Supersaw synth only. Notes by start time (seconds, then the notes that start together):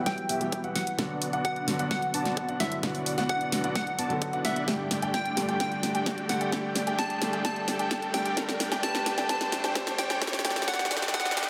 Already playing: B3 F#4 G4 E5 F#5
0.29 B3 F#4 G4 E5 G5
0.64 B3 F#4 G4 E5 F#5
0.99 B3 D4 F#4 D5 F#5
1.33 B3 D4 F#4 D5 F#5
1.79 B3 D4 F#4 D5 F#5
2.14 B3 D4 F#4 D5 A5
2.49 B3 D4 F#4 D5 F#5
2.83 B3 D4 F#4 D5 F#5
3.18 B3 D4 F#4 D5 F#5
3.64 B3 D4 F#4 D5 F#5
3.99 B3 D4 F#4 D5 A5
4.33 B3 D4 F#4 D5 F#5
4.45 B3 D4 F#4 D5 F#5
4.68 A3 D4 G4 D5
5.02 A3 D4 G4 D5 G5
5.49 A3 D4 G4 D5 G5
5.95 A3 D4 G4 D5 G5
6.41 A3 D4 G4 D5 G5
6.52 A3 D4 G4 D5 G5
6.87 A3 D4 G4 D5 G5
7.33 A3 D4 G4 D5 G5
7.45 A3 D4 G4 D5 G5
7.79 A3 D4 G4 D5 G5
8.25 A3 D4 G4 D5 G5
8.37 A3 D4 D5
8.72 A3 D4 G4 D5 G5
8.83 A3 D4 G4 D5 G5
9.18 A3 D4 G4 D5 G5
9.29 D4 D5
9.64 A3 D4 G4 D5 G5
9.75 A3 D4 G4 D5
10.10 A3 D4 G4 D5 G5
10.22 A3 D4 G4 D5 G5
10.45 A3 D4 G4 D5 G5
10.68 A3 D4 G4 D5 G5
10.91 A3 D4 G4 D5 G5
11.14 A3 D4 G4 D5 G5
11.37 A3 D4 G4 D5 G5